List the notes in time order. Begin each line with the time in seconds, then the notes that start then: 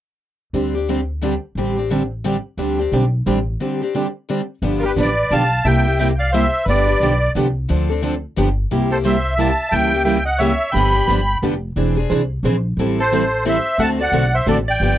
0.53 D2 D3 G3 C4 D4 G4
0.75 C4 D4 G4
0.88 D3 G3 C4 D4 G4
1.22 D3 G3 C4 D4 G4
1.55 A1 D3 G3 C4 D4 G4
1.77 C4 D4 G4
1.90 D3 G3 C4 D4 G4
2.24 D3 G3 C4 D4 G4
2.57 D2 D3 G3 C4 D4 G4
2.79 C4 D4 G4
2.92 B1 D3 G3 C4 D4 G4
3.26 A1 D3 G3 C4 D4 G4
3.60 D3 G3 C4 D4 G4
3.82 C4 D4 G4
3.95 D3 G3 C4 D4 G4
4.29 D3 G3 C4 D4 G4
4.62 G1 D3 F3 B3 D4 G4
4.78 F4 A#4
4.83 B3 D4 G4 B4
4.96 A1 D3 F3 B3 D4 G4 B4
5.01 D5
5.30 B1 D3 F3 B3 D4 G4 F5 A5
5.64 C2 C3 G3 A#3 E4 G4 E5 G5
5.86 A#3 E4 G4
5.99 C3 G3 A#3 E4 G4 E5 G5
6.19 D5 F5
6.32 C3 G3 A#3 E4 G4 C5 E5
6.65 G1 D3 F3 B3 D4 G4 B4
6.69 D5
6.87 B3 D4 G4
7.00 B1 D3 F3 B3 D4 G4
7.35 C2 D3 F3 B3 D4 G4
7.69 D2 D3 F3 C4 D4 A4
7.90 C4 D4 A4
8.02 D3 F3 C4 D4 A4
8.36 G1 D3 F3 B3 D4 G4
8.71 C2 C3 G3 A#3 E4 G4
8.90 A#3 E4 G4 A4 C5
9.04 C3 G3 A#3 E4 G4 C5 E5
9.36 C3 G3 A#3 E4 G4 E5 A5
9.69 C#2 C#3 E3 G3 E4 E5 G5
9.73 A#3 C#4 G4
9.94 A#3 C#4 G4
10.04 C#3 E3 G3 A#3 C#4 E4 G4 E5 G5
10.25 D#5 F#5
10.38 C#3 E3 G3 A#3 C#4 E4 G4 C#5 E5
10.72 G1 G5 B5
10.76 D3 F3 B3 D4 G4
10.94 B3 D4 G4
11.09 G1 D3 F3 B3 D4 G4
11.42 F1 D3 F3 B3 D4 G4
11.76 E1 E3 C4 D4 G#4 C5
11.97 C4 D4 G#4
12.10 C2 E3 C4 D4 G#4 C5
12.43 A#1 E3 C4 D4 G#4 C5
12.77 A1 E3 G3 C4 E4 A4
12.99 C4 E4 A4 C5
13.12 E3 G3 C4 E4 A4
13.45 E3 G3 C4 E4 A4 C5 E5
13.78 D2 D3 A3 C4 F#4 A4 F#5 A5
13.99 C4 F#4 A4 D5 F#5
14.12 B1 D3 A3 C4 F#4 A4
14.34 C5 E5
14.46 A1 D3 A3 C4 F#4 A4 D5
14.68 D5 G5
14.80 G1 D3 F3 B3 D4 G4